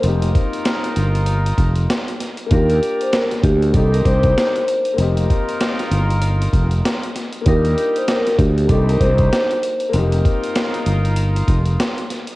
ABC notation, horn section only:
X:1
M:4/4
L:1/8
Q:"Swing 16ths" 1/4=97
K:Fdor
V:1 name="Horn section"
[EFB]6- [EFB] z | [GBd]3 z [EGc]3 z | [EFB]6- [EFB] z | [G,EG]3 z [EGc]3 z |
[EFB]6- [EFB] z |]